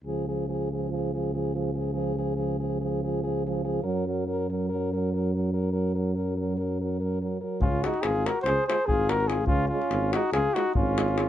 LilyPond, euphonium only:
\new Staff \with { instrumentName = "Euphonium" } { \clef bass \time 9/8 \key des \major \tempo 4. = 95 f8 f8 f8 f8 f8 f8 f8 f8 f8 | f8 f8 f8 f8 f8 f8 f8 f8 f8 | ges8 ges8 ges8 ges8 ges8 ges8 ges8 ges8 ges8 | ges8 ges8 ges8 ges8 ges8 ges8 ges8 ges8 ges8 |
r8 aes8 r8 aes8 r8 aes8 r8 aes8 aes8 | r8 aes8 r8 aes8 r8 aes8 r8 aes8 aes8 | }